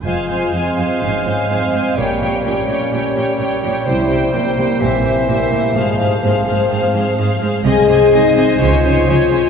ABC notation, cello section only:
X:1
M:4/4
L:1/8
Q:1/4=126
K:Fm
V:1 name="Cello section" clef=bass
F,, F,, F,, F,, A,, A,, A,, A,, | B,, B,, B,, B,, B,, B,, B,, B,, | C, C, C, C, B,, B,, B,, B,, | A,, A,, A,, A,, A,, A,, A,, A,, |
[K:Ab] C, C, C, C, D, D, D, D, |]